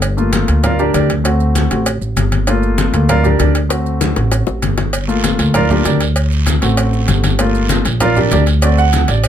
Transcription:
Already playing: upright bass G1
0.02 cowbell, high conga, maracas
0.17 grand piano A3 A#3 F4, high conga, maracas
0.33 cowbell, high conga, maracas
0.48 upright bass D2, cowbell, high conga, maracas
0.64 grand piano F4 A#4 D5 F5, cowbell, high conga, low conga, maracas
0.79 grand piano D4 G4 A#4 D5, high conga, maracas
0.94 upright bass D2, grand piano D4 G4 A#4 D5, cowbell, high conga, maracas
1.10 cowbell, high conga, maracas
1.24 grand piano A3 C4 F#4, cowbell, high conga, maracas
1.40 high conga, maracas
1.55 cowbell, high conga, maracas
1.71 upright bass A1, grand piano A3 C4 F#4, cowbell, high conga, maracas
1.86 cowbell, high conga, maracas
2.01 upright bass A1, high conga, maracas
2.16 upright bass G1, cowbell, high conga, maracas
2.32 cowbell, high conga, maracas
2.47 grand piano A3 A#3 F4, cowbell, high conga, maracas
2.63 high conga, maracas
2.78 cowbell, high conga, maracas
2.93 upright bass D2, grand piano A3 A#3 F4, cowbell, high conga, maracas
3.09 grand piano F4 A#4 D5 F5, cowbell, high conga, low conga, maracas
3.24 grand piano D4 G4 A#4 D5, high conga, low conga, maracas
3.39 upright bass D2, grand piano D4 G4 A#4 D5, cowbell, high conga, maracas
3.55 cowbell, maracas
3.69 grand piano A3 C4 F#4, cowbell, high bongo, high conga, maracas
3.86 high conga, maracas
4.01 cowbell, high bongo, high conga, maracas
4.16 upright bass A1, cowbell, high bongo, high conga, maracas
4.32 cowbell, low bongo, high conga, maracas
4.47 upright bass A1, low bongo, high conga, maracas
4.62 upright bass G1, cowbell, high conga, maracas
4.78 cowbell, low bongo, high conga, maracas
4.93 cowbell, high conga, long guiro, maracas
5.08 grand piano A3 A#3 F4, high conga, maracas
5.24 cowbell, high conga, short guiro, maracas
5.39 upright bass D2, cowbell, high conga, short guiro, maracas
5.54 grand piano F4 A#4 D5 F5, cowbell, high conga, low conga, long guiro, maracas
5.69 grand piano A3 A#3 D4 F4 G4 A#4 D5, high conga, low conga, maracas
5.85 upright bass D2, grand piano D4 G4 A#4 D5, cowbell, high conga, short guiro, maracas
6.00 cowbell, short guiro, maracas
6.16 cowbell, high conga, long guiro, maracas
6.32 high conga, maracas
6.46 cowbell, high conga, short guiro, maracas
6.61 upright bass A1, grand piano A3 C4 F#4, cowbell, high conga, short guiro, maracas
6.77 cowbell, high conga, long guiro, maracas
6.93 high conga, maracas
7.08 upright bass G1, cowbell, high conga, short guiro, maracas
7.24 cowbell, high conga, short guiro, maracas
7.39 grand piano A3 A#3 F4, cowbell, high conga, long guiro, maracas
7.54 high conga, maracas
7.69 cowbell, high conga, short guiro, maracas
7.85 upright bass A#1, cowbell, high conga, short guiro, maracas
8.00 grand piano F4 A#4 D5 F5, cowbell, high conga, low conga, long guiro, maracas
8.16 grand piano D4 G4 A#4 D5, high conga, low conga, maracas
8.31 upright bass D2, grand piano D4 G4 A#4 D5, cowbell, high conga, short guiro, maracas
8.46 cowbell, short guiro, maracas
8.62 grand piano A3 C4 F#4 D5, cowbell, high conga, long guiro, maracas
8.78 grand piano F#5, high conga, maracas
8.93 cowbell, high conga, short guiro, maracas
9.08 upright bass A1, grand piano D5, cowbell, high conga, short guiro, maracas
9.24 cowbell, high conga, long guiro, maracas

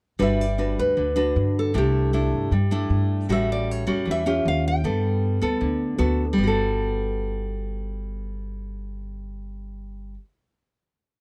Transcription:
0.19 upright bass G1, nylon-string guitar G3 D4 F#4 B4 E5
0.41 nylon-string guitar D5
0.58 nylon-string guitar D4 F#4 B4
0.78 upright bass D2, nylon-string guitar B4
0.97 upright bass D2, nylon-string guitar D3
1.16 nylon-string guitar D4 F#4 B4
1.36 upright bass G2
1.59 nylon-string guitar A4
1.74 upright bass C2, nylon-string guitar C3 A3 D4 E4 G4
2.13 nylon-string guitar A3 D4 E4
2.32 upright bass G2
2.51 upright bass G2, nylon-string guitar G3
2.71 nylon-string guitar A3 D4 E4
2.90 upright bass G2
3.29 upright bass A1, nylon-string guitar A2 G3 C#4 F#4 E5
3.52 nylon-string guitar D5
3.71 nylon-string guitar C#5
3.87 upright bass E2, nylon-string guitar G3 C#4 F#4
4.06 upright bass E2, nylon-string guitar E3
4.11 nylon-string guitar E5
4.26 nylon-string guitar C#4 F4 G4
4.45 upright bass D#2, nylon-string guitar F5
4.68 nylon-string guitar G5
4.84 upright bass G2, nylon-string guitar G3 B3 A4
5.42 upright bass D2, nylon-string guitar B3 A4
5.61 upright bass D2, nylon-string guitar D3
5.98 upright bass D2, nylon-string guitar B3 F#4 A4
6.33 nylon-string guitar G3
6.38 upright bass G1, nylon-string guitar B3
6.43 nylon-string guitar F#4 A4

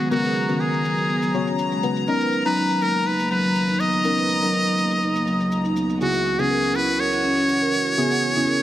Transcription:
Already playing: string section C#3 F#3 B3
0.11 synth stab C#3 B3 F#4 A#4, marimba G#3, muted trumpet F#4, string section A#5, shaker
0.24 marimba G#4, shaker
0.36 shaker
0.48 synth stab C#3 B3 F#4 A#4, marimba D#3, shaker
0.60 marimba B3, muted trumpet G#4, shaker
0.73 marimba D#3, shaker
0.85 marimba F#3, shaker
0.98 shaker
1.09 marimba B3, shaker
1.22 marimba F#3, shaker
1.34 synth stab C#3 B3 F#4 C#5, shaker
1.47 marimba C#4, shaker
1.59 shaker
1.72 marimba G#3, shaker
1.83 synth stab C#3 B3 F#4 B4, marimba G#3, shaker
1.96 shaker
2.08 string section C#2 D#3, marimba B3, synth stab C#4 D#4 A#4, muted trumpet A#4, shaker
2.21 marimba B4, shaker
2.32 shaker
2.45 marimba F#3, synth stab C#4 D#4 A#5, muted trumpet B4, shaker
2.57 marimba D#4, shaker
2.70 marimba F#3, shaker
2.81 marimba A#3, muted trumpet A#4, shaker
2.95 shaker
3.06 marimba D#4, muted trumpet B4, shaker
3.19 marimba A#3, shaker
3.31 marimba F#3, muted trumpet B4, shaker
3.44 marimba F#3, shaker
3.55 shaker
3.68 marimba D#4, shaker
3.79 marimba B3, muted trumpet D#5, shaker
3.93 shaker
4.04 marimba B3, synth stab C#4 D#4 A#4, shaker
4.17 marimba B4, shaker
4.29 shaker
4.42 marimba F#3, synth stab C#4 D#4 A#4, shaker
4.53 marimba D#4, shaker
4.66 marimba F#3, shaker
4.78 marimba A#3, shaker
4.91 shaker
5.02 marimba D#4, shaker
5.16 marimba A#3, shaker
5.27 marimba F#3, shaker
5.40 marimba F#3, shaker
5.52 shaker
5.65 marimba D#4, shaker
5.76 marimba B3, shaker
5.90 shaker
6.01 synth stab C#3 B3 E4 G#4, string section E3 F#4, marimba F#4, muted trumpet F#4, shaker
6.14 marimba F#5, shaker
6.26 shaker
6.39 synth stab C#3 B3 E4 G#4, marimba C#4, muted trumpet G#4, shaker
6.50 marimba A#4, shaker
6.63 marimba C#4, shaker
6.75 marimba E4, muted trumpet B4, shaker
6.88 shaker
6.99 marimba A#4, muted trumpet C#5, shaker
7.12 marimba E4, shaker
7.24 marimba C#4, shaker
7.37 marimba C#4, shaker
7.49 shaker
7.62 marimba A#4, shaker
7.73 shaker
7.86 shaker
7.98 synth stab C#3 B3 E4 G#4, marimba F#4, string section G#4, shaker
8.11 marimba F#5, shaker
8.22 shaker
8.35 synth stab C#3 B3 E4 G#4, marimba C#4, shaker
8.47 marimba A#4, shaker

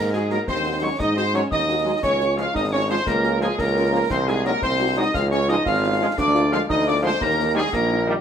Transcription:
Already playing: tuba G#2, euphonium A#3, woodwind section A#4, piccolo A#5
0.13 french horn section G#3 D#4 F#4, euphonium G#3, woodwind section G#4, trumpet section G#4, piccolo G#5, snare
0.29 trombone section F#3 G#3, french horn section G#3 D#4 F#4, euphonium A#3, woodwind section A#4, trumpet section A#4, piccolo A#5, snare
0.47 tuba D#2, euphonium C4, woodwind section C5, trumpet section C5, piccolo C6, concert bass drum, snare
0.64 french horn section G#3 D#4 F#4
0.81 trombone section F#3 G#3, french horn section G#3 D#4 F#4, euphonium C#4, woodwind section C#5, trumpet section C#5, piccolo C#6
0.99 tuba G#2, euphonium D#4, woodwind section D#5, trumpet section D#5, piccolo D#6, concert bass drum, snare
1.16 french horn section G#3 D#4 F#4, euphonium C4, trumpet section C5, woodwind section C5, piccolo C6, snare
1.33 trombone section F#3 G#3, french horn section G#3 D#4 F#4, euphonium C#4, woodwind section C#5, trumpet section C#5, piccolo C#6, snare
1.51 tuba D#2, euphonium D#4, trumpet section D#5, woodwind section D#5, piccolo D#6, concert bass drum, snare
1.68 french horn section G#3 D#4 F#4
1.85 trombone section F#3 G#3, french horn section G#3 D#4 F#4
2.03 tuba C#2, euphonium C#4, trumpet section C#5, woodwind section C#5, piccolo C#6, concert bass drum, snare, crash
2.20 french horn section G#3 C#4 F4, snare
2.37 trombone section F3 G#3, french horn section G#3 C#4 F4, euphonium F4, woodwind section F5, trumpet section F5, piccolo F6, snare
2.54 tuba G#1, euphonium D#4, woodwind section D#5, trumpet section D#5, piccolo D#6, concert bass drum, snare
2.71 french horn section G#3 C#4 F4, euphonium C#4, woodwind section C#5, trumpet section C#5, piccolo C#6
2.89 trombone section F3 G#3, french horn section G#3 C#4 F4, euphonium C4, woodwind section C5, trumpet section C5, piccolo C6
3.06 tuba C#2, euphonium A#3, woodwind section A#4, trumpet section A#4, piccolo A#5, concert bass drum, snare
3.24 french horn section A#3 C#4 F4, snare
3.41 trombone section F3 A#3, euphonium G#3, french horn section A#3 C#4 F4, woodwind section G#4, trumpet section G#4, piccolo G#5, snare
3.58 tuba C#2, euphonium A#3, woodwind section A#4, trumpet section A#4, piccolo A#5, concert bass drum, snare
3.76 french horn section A#3 C#4 F4
3.92 trombone section F3 A#3, french horn section A#3 C#4 F4
4.10 tuba C2, euphonium C4, woodwind section C5, trumpet section C5, piccolo C6, concert bass drum, snare, crash
4.27 french horn section G#3 D#4 F#4, euphonium G#3, trumpet section G#4, woodwind section G#4, piccolo G#5, snare
4.44 trombone section F#3 G#3, french horn section G#3 D#4 F#4, euphonium A#3, woodwind section A#4, trumpet section A#4, piccolo A#5, snare
4.62 tuba C2, euphonium C4, woodwind section C5, trumpet section C5, piccolo C6, concert bass drum, snare
4.79 french horn section G#3 D#4 F#4
4.97 trombone section F#3 G#3, french horn section G#3 D#4 F#4, euphonium D#4, woodwind section D#5, trumpet section D#5, piccolo D#6
5.13 tuba C#2, euphonium F4, woodwind section F5, trumpet section F5, piccolo F6, concert bass drum, snare
5.30 french horn section G#3 C#4 F4, euphonium C#4, woodwind section C#5, trumpet section C#5, piccolo C#6, snare
5.48 trombone section F3 G#3, french horn section G#3 C#4 F4, euphonium D#4, woodwind section D#5, trumpet section D#5, piccolo D#6, snare
5.65 tuba G#1, euphonium F4, woodwind section F5, trumpet section F5, piccolo F6, concert bass drum, snare
5.83 french horn section G#3 C#4 F4
6.00 trombone section F3 G#3, french horn section G#3 C#4 F4
6.17 tuba D2, euphonium D4, woodwind section D5, trumpet section D5, piccolo D6, concert bass drum, snare, crash
6.34 french horn section G#3 A#3 F4, snare
6.51 trombone section F3 G#3, french horn section G#3 A#3 F4, euphonium F4, woodwind section F5, trumpet section F5, piccolo F6, snare
6.69 tuba D2, euphonium D#4, woodwind section D#5, trumpet section D#5, piccolo D#6, concert bass drum, snare
6.86 french horn section G#3 A#3 F4, euphonium D4, woodwind section D5, trumpet section D5, piccolo D6
7.03 trombone section F3 G#3, french horn section G#3 A#3 F4, euphonium C4, woodwind section C5, trumpet section C5, piccolo C6
7.21 tuba D#2, euphonium A#3, woodwind section A#4, trumpet section A#4, piccolo A#5, concert bass drum, snare
7.38 french horn section G3 A#3 D#4
7.54 trombone section D#3 G3, french horn section G3 A#3 D#4, euphonium G#3, woodwind section G#4, trumpet section G#4, piccolo G#5
7.72 tuba A#1, euphonium A#3, woodwind section A#4, trumpet section A#4, piccolo A#5, concert bass drum, snare
7.90 french horn section G3 A#3 D#4
8.06 trombone section D#3 G3, french horn section G3 A#3 D#4

